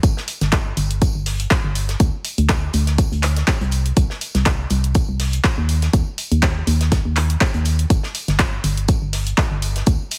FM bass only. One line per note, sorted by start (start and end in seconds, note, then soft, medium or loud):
0.03 0.13 G1 medium
0.41 0.72 G1 loud
0.77 1.09 G1 loud
1.15 1.46 G1 medium
1.64 1.95 G1 medium
2.00 2.10 D2 loud
2.38 2.69 D2 loud
2.74 3.06 D2 loud
3.12 3.43 D2 medium
3.61 3.92 C2 medium
3.97 4.07 C2 loud
4.35 4.66 C2 medium
4.71 5.03 C2 loud
5.09 5.39 C2 medium
5.58 5.89 D#2 medium
5.93 6.03 D#2 medium
6.32 6.62 D#2 loud
6.67 6.99 D#2 loud
7.05 7.36 D#2 medium
7.55 7.85 D#2 medium
7.90 8.00 G1 medium
8.28 8.59 G1 loud
8.64 8.96 G1 loud
9.02 9.33 G1 medium
9.51 9.82 G1 medium
9.87 9.97 D2 loud